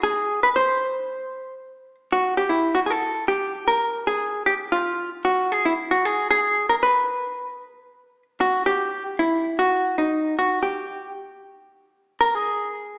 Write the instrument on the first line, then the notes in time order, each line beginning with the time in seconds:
hollow-body jazz guitar
0.03 G#4
0.43 B4
0.56 C5
2.12 F#4
2.37 G4
2.49 E4
2.75 F#4
2.86 G#4
2.90 A4
3.28 G4
3.68 A#4
4.07 G#4
4.46 G4
4.72 F4
5.25 F#4
5.52 G#4
5.65 E4
5.91 F#4
6.05 G#4
6.31 G#4
6.69 A#4
6.83 B4
8.41 F#4
8.66 G4
9.19 E4
9.59 F#4
9.98 D#4
10.39 F#4
10.63 G4
12.21 A#4
12.35 G#4